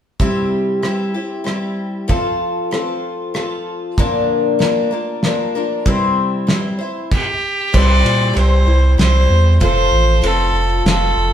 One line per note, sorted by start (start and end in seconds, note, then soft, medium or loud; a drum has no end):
0.20 0.83 C3 medium
0.20 0.81 G3 medium
0.20 0.83 C4 medium
0.20 0.83 E4 medium
0.20 0.84 G4 medium
0.20 kick medium
0.82 1.14 G3 medium
0.82 1.15 C4 soft
0.82 1.14 E4 medium
0.82 1.13 G4 medium
0.82 cross-stick medium
1.14 1.44 C4 soft
1.14 1.46 E4 soft
1.14 1.46 G4 soft
1.44 2.07 G3 medium
1.44 2.07 C4 soft
1.44 2.09 E4 medium
1.44 2.10 G4 medium
1.44 cross-stick medium
2.08 2.71 F3 medium
2.08 2.71 C4 medium
2.08 2.73 F4 medium
2.08 2.72 A4 medium
2.08 kick medium
2.71 3.33 F3 medium
2.71 3.34 C4 medium
2.71 3.35 F4 medium
2.71 3.36 A4 medium
2.71 cross-stick medium
3.34 3.97 F3 medium
3.34 3.98 C4 medium
3.34 3.98 F4 medium
3.34 3.99 A4 medium
3.34 cross-stick medium
3.98 4.61 A#2 medium
3.98 4.61 D3 medium
3.98 4.58 F3 medium
3.98 4.59 A#3 medium
3.98 4.60 D4 medium
3.98 4.60 A#4 medium
3.98 kick loud
4.59 4.91 F3 medium
4.59 4.92 A#3 medium
4.59 4.91 D4 medium
4.59 4.90 A#4 medium
4.59 snare medium
4.91 5.22 F3 soft
4.91 5.23 A#3 soft
4.91 5.23 D4 soft
4.91 5.23 A#4 soft
5.23 5.55 F3 medium
5.23 5.55 A#3 medium
5.23 5.54 D4 medium
5.23 5.54 A#4 medium
5.23 snare medium
5.55 5.86 F3 soft
5.55 5.87 A#3 soft
5.55 5.86 D4 soft
5.55 5.86 A#4 medium
5.86 6.48 C3 medium
5.86 6.46 G3 medium
5.86 6.47 C4 medium
5.86 6.48 E4 medium
5.86 6.49 C5 medium
5.86 kick medium
6.47 6.79 G3 medium
6.47 6.80 C4 medium
6.47 6.79 E4 medium
6.47 6.77 C5 medium
6.47 snare medium
6.79 7.12 E4 soft
6.79 7.10 C5 soft
6.83 7.12 C4 soft
7.11 7.77 G4 medium
7.11 kick medium
7.11 crash medium
7.73 8.03 C2 medium
7.73 8.36 C3 medium
7.73 8.32 G3 medium
7.73 8.34 C4 medium
7.73 8.34 E4 medium
7.73 8.36 C5 medium
7.73 8.37 D5 medium
7.73 kick loud
7.73 crash medium
8.04 8.33 A#2 medium
8.04 ride medium
8.34 8.65 C2 medium
8.34 8.66 G3 medium
8.34 8.67 C4 medium
8.34 8.66 E4 medium
8.34 8.64 C5 medium
8.34 ride medium
8.38 8.96 C5 medium
8.65 8.96 C2 loud
8.65 8.98 C4 soft
8.65 8.98 E4 soft
8.65 8.97 C5 soft
8.98 9.27 C2 medium
8.98 9.60 G3 medium
8.98 9.60 C4 medium
8.98 9.61 E4 medium
8.98 9.58 C5 medium
8.98 9.62 C5 medium
8.98 snare medium
8.98 ride medium
9.30 9.58 E2 medium
9.60 9.90 F1 medium
9.60 10.21 F3 medium
9.60 10.23 C4 medium
9.60 10.24 F4 medium
9.60 10.24 A4 medium
9.60 10.28 C5 loud
9.60 kick medium
9.60 ride soft
9.91 10.20 A1 medium
10.22 10.52 F1 medium
10.22 10.84 F3 medium
10.22 10.85 C4 medium
10.22 10.86 F4 medium
10.22 10.86 A4 medium
10.22 ride medium
10.26 10.87 A4 medium
10.52 10.82 F1 medium
10.85 11.14 F1 medium
10.85 11.33 F3 medium
10.85 11.33 C4 medium
10.85 11.33 F4 medium
10.85 11.33 A4 medium
10.85 snare medium
10.85 ride medium
10.89 11.33 A4 medium
11.16 11.33 F1 medium